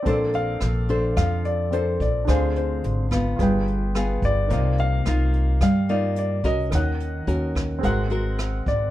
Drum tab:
HH |xxxxxxxx|xxxxxxxx|xxxxxxxx|xxxxxxxx|
SD |--r-r---|r--r--r-|--r-r---|r--r--r-|
BD |o---o--o|o--oo--o|o---o--o|o--oo--o|